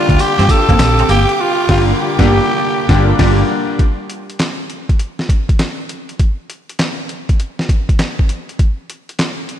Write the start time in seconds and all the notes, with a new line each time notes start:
Already playing: D3 G3 A#3 D4 F4 G4 F5 G5 D6
0.09 D2, kick, closed hi-hat
0.19 G4, muted fingered electric bass stroke, closed hi-hat, tambourine
0.39 G2 C4, snare, closed hi-hat
0.49 A#3 D4 F4 G4 A4, muted clean electric guitar stroke, kick, closed hi-hat, tambourine
0.69 G1 D3 G3 A#3 C4, kick, closed hi-hat
0.79 A#1, muted clean electric guitar stroke, snare, clap, closed hi-hat, tambourine
0.99 C4, closed hi-hat
1.09 G1 A#3 G4, closed hi-hat, tambourine
1.29 closed hi-hat
1.41 F4
1.69 G1 D3 G3 A#3 D4 F4 G4, kick, snare, crash
1.76 A#3
2.01 G4
2.18 G1 D3 G3 A#3 D4 F4 G4, kick, snare
2.89 G1 D3 G3 A#3 D4 F4 G4, kick, snare
3.18 G1 D3 G3 A#3 D4 F4 G4, kick, snare, crash
3.79 kick, closed hi-hat
4.10 closed hi-hat
4.30 closed hi-hat
4.39 snare, clap, closed hi-hat
4.70 closed hi-hat
4.89 kick, closed hi-hat
4.99 closed hi-hat
5.19 snare
5.29 kick, closed hi-hat
5.49 kick, closed hi-hat
5.59 snare, clap, closed hi-hat
5.89 closed hi-hat
6.09 closed hi-hat
6.19 kick, closed hi-hat
6.50 closed hi-hat
6.69 closed hi-hat
6.79 snare, clap, closed hi-hat
7.09 closed hi-hat
7.29 kick, closed hi-hat
7.40 closed hi-hat
7.59 snare
7.69 kick, closed hi-hat
7.89 kick, closed hi-hat
7.99 snare, clap, closed hi-hat
8.19 kick
8.29 closed hi-hat
8.49 closed hi-hat
8.59 kick, closed hi-hat
8.90 closed hi-hat
9.09 closed hi-hat
9.19 snare, clap, closed hi-hat
9.49 closed hi-hat